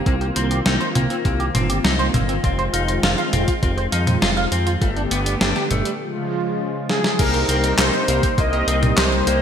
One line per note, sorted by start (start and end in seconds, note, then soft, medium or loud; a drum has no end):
0.00 4.78 D#3 medium
0.00 2.40 A#3 medium
0.00 4.78 C4 medium
0.06 0.31 C2 loud
0.06 0.29 A#3 medium
0.06 0.14 C4 medium
0.06 4.77 F4 medium
0.06 kick loud
0.06 closed hi-hat soft
0.21 0.26 G4 loud
0.21 closed hi-hat soft
0.36 0.61 C2 medium
0.36 0.59 C4 medium
0.36 0.43 C5 medium
0.36 closed hi-hat medium
0.51 0.58 G4 medium
0.51 closed hi-hat soft
0.66 0.78 C2 medium
0.66 0.73 C4 loud
0.66 0.88 D#4 medium
0.66 snare loud
0.66 closed hi-hat soft
0.80 0.88 C5 loud
0.80 closed hi-hat soft
0.95 1.08 C2 medium
0.95 1.18 A#3 medium
0.95 1.03 C4 medium
0.95 closed hi-hat medium
0.95 mid tom medium
1.10 1.15 C4 loud
1.10 closed hi-hat soft
1.25 1.50 C2 loud
1.25 1.48 A#3 medium
1.25 1.32 C4 medium
1.25 kick loud
1.25 closed hi-hat soft
1.40 1.44 G4 loud
1.40 closed hi-hat soft
1.55 1.80 G1 medium
1.55 1.78 C4 medium
1.55 1.62 C5 medium
1.55 closed hi-hat medium
1.55 mid tom loud
1.69 1.77 G4 medium
1.69 closed hi-hat medium
1.84 2.10 C2 medium
1.84 1.92 C4 loud
1.84 2.07 D#4 medium
1.84 snare loud
1.84 closed hi-hat soft
1.99 2.07 C5 loud
1.99 closed hi-hat soft
2.14 2.39 G1 medium
2.14 2.37 A#3 medium
2.14 2.21 C4 medium
2.14 kick medium
2.14 closed hi-hat medium
2.14 mid tom medium
2.29 2.33 C4 loud
2.29 closed hi-hat soft
2.44 2.69 F1 loud
2.44 4.79 G#3 medium
2.44 2.67 C4 medium
2.44 2.51 F4 medium
2.44 kick loud
2.44 closed hi-hat soft
2.59 2.63 C5 loud
2.59 closed hi-hat soft
2.73 2.99 F1 medium
2.73 2.96 D#4 medium
2.73 2.81 F5 medium
2.73 closed hi-hat medium
2.88 2.96 C5 medium
2.88 closed hi-hat medium
3.03 3.16 F1 medium
3.03 3.11 F4 loud
3.03 3.26 F4 medium
3.03 snare loud
3.03 closed hi-hat soft
3.18 3.25 F5 loud
3.18 closed hi-hat soft
3.33 3.45 F1 medium
3.33 3.56 C4 medium
3.33 3.40 F4 medium
3.33 closed hi-hat medium
3.33 mid tom medium
3.48 3.52 F4 loud
3.48 kick medium
3.48 closed hi-hat soft
3.63 3.88 F1 loud
3.63 3.85 C4 medium
3.63 3.70 F4 medium
3.63 kick loud
3.63 closed hi-hat medium
3.77 3.82 C5 loud
3.77 closed hi-hat soft
3.92 4.17 F2 medium
3.92 4.15 D#4 medium
3.92 4.00 F5 medium
3.92 closed hi-hat medium
4.07 4.15 C5 medium
4.07 closed hi-hat medium
4.07 mid tom loud
4.22 4.47 F1 medium
4.22 4.30 F4 loud
4.22 4.45 F4 medium
4.22 snare loud
4.22 closed hi-hat soft
4.37 4.44 F5 loud
4.37 closed hi-hat soft
4.52 4.77 F2 medium
4.52 4.75 C4 medium
4.52 4.59 F4 medium
4.52 closed hi-hat medium
4.67 4.71 F4 loud
4.67 closed hi-hat medium
4.81 5.07 G1 loud
4.81 5.99 D3 medium
4.81 4.89 G3 medium
4.81 5.04 A3 medium
4.81 5.99 A3 medium
4.81 5.99 B3 medium
4.81 5.99 G4 medium
4.81 kick loud
4.81 closed hi-hat medium
4.96 5.01 D4 loud
4.96 closed hi-hat soft
5.11 5.36 G1 medium
5.11 5.34 B3 medium
5.11 5.19 G4 medium
5.11 closed hi-hat loud
5.26 5.34 D4 medium
5.26 closed hi-hat medium
5.41 5.53 G1 medium
5.41 5.48 G3 loud
5.41 5.64 D4 medium
5.41 snare loud
5.41 closed hi-hat medium
5.56 5.63 G4 loud
5.56 snare soft
5.56 closed hi-hat soft
5.71 5.83 G1 medium
5.71 5.78 G3 medium
5.71 5.93 A3 medium
5.71 closed hi-hat medium
5.71 mid tom medium
5.85 5.90 G3 loud
5.85 closed hi-hat medium
6.00 7.18 C#3 medium
6.00 7.18 F3 medium
6.00 7.18 G#3 medium
6.00 7.18 F4 medium
6.89 7.20 G#4 loud
6.89 snare medium
7.04 snare medium
7.19 7.44 C2 loud
7.19 9.42 C3 medium
7.19 9.42 G3 medium
7.19 9.42 A#3 medium
7.19 7.42 A#3 medium
7.19 7.60 C4 medium
7.19 7.60 D#4 medium
7.19 9.42 D#4 medium
7.19 7.60 G4 medium
7.19 7.80 A#4 loud
7.19 7.60 A#4 medium
7.19 7.60 C5 medium
7.19 kick loud
7.19 closed hi-hat medium
7.19 crash loud
7.34 closed hi-hat soft
7.49 7.74 C2 medium
7.49 7.72 C4 medium
7.49 closed hi-hat loud
7.64 8.05 C4 medium
7.64 8.05 D#4 medium
7.64 8.05 G4 medium
7.64 8.05 A#4 medium
7.64 8.05 C5 medium
7.64 closed hi-hat medium
7.78 7.91 C2 medium
7.78 8.01 D#4 medium
7.78 8.40 C5 loud
7.78 snare loud
7.78 clap loud
7.78 closed hi-hat medium
7.93 closed hi-hat soft
8.08 8.21 C2 medium
8.08 8.31 A#3 medium
8.08 8.26 C4 medium
8.08 8.26 D#4 medium
8.08 8.26 G4 medium
8.08 8.26 A#4 medium
8.08 8.26 C5 loud
8.08 closed hi-hat loud
8.23 kick loud
8.23 closed hi-hat medium
8.38 8.63 C2 loud
8.38 8.61 A#3 medium
8.38 8.99 D#5 loud
8.38 kick loud
8.38 closed hi-hat medium
8.53 8.94 C4 loud
8.53 8.94 D#4 medium
8.53 8.94 G4 medium
8.53 8.94 A#4 medium
8.53 8.94 D#5 loud
8.53 closed hi-hat soft
8.67 8.93 C2 loud
8.67 8.90 C4 medium
8.67 closed hi-hat loud
8.83 closed hi-hat medium
8.83 mid tom medium
8.97 9.22 C2 medium
8.97 9.23 C4 medium
8.97 9.23 D#4 medium
8.97 9.20 D#4 medium
8.97 9.23 G4 medium
8.97 9.23 A#4 medium
8.97 9.42 C5 loud
8.97 9.23 C5 medium
8.97 snare loud
8.97 clap loud
8.97 closed hi-hat medium
9.12 closed hi-hat soft
9.27 9.42 C2 medium
9.27 9.42 A#3 medium
9.27 9.42 C4 loud
9.27 9.42 D#4 medium
9.27 9.42 G4 medium
9.27 9.42 A#4 medium
9.27 9.42 C5 loud
9.27 closed hi-hat loud